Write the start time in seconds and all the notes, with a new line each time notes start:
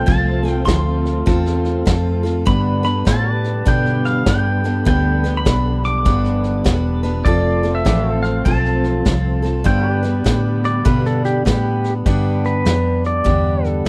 Already playing: A3 C4 F4 A4 C5
0.06 C2 F3 C4 F4 A4 A5, kick, snare
0.43 C4 F4 A4, snare
0.50 G5
0.65 D2 F3 C4 F4 A4 C6, kick, snare, hi-hat pedal
1.05 snare
1.26 E2 C4 F4 A4, kick, snare
1.46 snare
1.65 snare
1.86 F2 F3 C4 F4 A4, kick, snare, hi-hat pedal
2.23 C4 F4 A4, snare
2.45 G2 D3 G3 B3 D4 B4 B5, kick, snare
2.83 G3 B3 D4 B4 B5, snare
3.05 A2 G3 B3 D4 F4 A4 B4 C5 A5, kick, snare, hi-hat pedal
3.32 G4 B4 D5
3.44 snare
3.65 G2 B2 D3 G3 B3 D4 B4 G5, kick, snare
3.86 snare
4.05 F5, snare
4.26 G2 G3 B3 D4 B4 G5, kick, snare, hi-hat pedal
4.64 G3 B3 D4 B4, snare
4.85 D2 G2 D3 F3 G3 B3 D4 B4 G5, kick, snare
5.24 G3 B3 D4 B4, snare
5.37 B5
5.45 B1 G3 B3 D4 B4, kick, snare, hi-hat pedal
5.84 D6, snare
6.05 G1 G2 D3 G3 B3 D4 B4, kick, snare
6.25 snare
6.44 snare
6.64 E1 G3 B3 D4 B4, kick, snare, hi-hat pedal
7.03 G3 B3 D4 B4, snare
7.25 F1 F3 A3 C4 F4 A4 D5, kick, snare
7.63 C4 F4 A4, snare
7.75 E5
7.85 A1 F3 C4 F4 G4 A4 B4 D5, kick, snare, hi-hat pedal
8.12 F4 A4 C5
8.23 F5, snare
8.45 B1 F3 C4 F4 A4 A5, kick, snare
8.65 snare
8.84 snare
9.05 C2 F3 C4 F4 A4, kick, snare, hi-hat pedal
9.42 C4 F4 A4, snare
9.64 G2 D3 G3 B3 D4 F4 A4 B4 C5 G5, kick, snare
9.91 G4 B4 D5
10.03 G3 B3 D4 B4, snare
10.24 A2 G3 B3 D4 B4, kick, snare, hi-hat pedal
10.64 D5, snare
10.85 G2 B2 D3 G3 B3 D4 B4, kick, snare
11.05 A4, snare
11.24 G4, snare
11.45 A2 G3 B3 D4 G4 B4, kick, snare, hi-hat pedal
11.84 snare
12.06 G2 D3 G3 B3 D4 G4 B4 D5, kick, snare
12.44 B4, snare
12.65 F2 G3 B3 D4 G4, snare, hi-hat pedal
13.04 D5, snare
13.24 E2 G2 D3 G3 B3 D4 G4, kick, snare
13.64 A4, snare
13.85 G3